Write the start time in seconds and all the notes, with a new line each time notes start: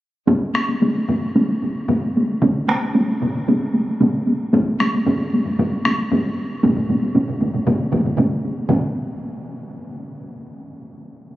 0.28 taiko, taiko low-mid, taiko high
0.42 taiko high
0.55 taiko rim, taiko high
0.69 taiko high
0.82 taiko high
0.95 taiko high
1.08 taiko low-mid, taiko high
1.22 taiko high
1.36 taiko high
1.50 taiko high
1.62 taiko, taiko high
1.76 taiko high
1.88 taiko low-mid, taiko high
2.02 taiko high
2.16 taiko high
2.29 taiko high
2.42 taiko, taiko mid, taiko high
2.56 taiko high
2.69 taiko rim, taiko high
2.82 taiko high
2.95 taiko high
3.09 taiko high
3.22 taiko mid, taiko high
3.35 taiko high
3.48 taiko, taiko high
3.61 taiko high
3.74 taiko high
3.88 taiko high
4.00 taiko mid, taiko high
4.14 taiko high
4.27 taiko high
4.53 taiko, taiko low-mid, taiko high
4.67 taiko high
4.80 taiko rim, taiko high
4.94 taiko high
5.06 taiko low-mid, taiko high
5.20 taiko high
5.33 taiko high
5.46 taiko low-mid, taiko high
5.59 taiko low-mid, taiko high
5.73 taiko high
5.85 taiko rim, taiko, taiko high
5.99 taiko high
6.12 taiko low-mid, taiko high
6.25 taiko high
6.51 taiko high
6.63 taiko, taiko low-mid, taiko mid, taiko high
6.76 taiko low-mid, taiko mid
6.89 taiko low-mid, taiko mid, taiko high
7.02 taiko high
7.15 taiko low-mid, taiko mid, taiko high
7.28 taiko low-mid, taiko mid, taiko high
7.41 taiko low-mid, taiko mid, taiko high
7.54 taiko low-mid, taiko mid, taiko high
7.67 taiko, taiko low-mid, taiko mid, taiko high
7.80 taiko high
7.92 taiko low-mid, taiko mid, taiko high
8.05 taiko low-mid, taiko mid, taiko high
8.18 taiko low-mid, taiko mid, taiko high
8.32 taiko high
8.45 taiko high
8.57 taiko high
8.69 taiko, taiko low-mid, taiko mid, taiko high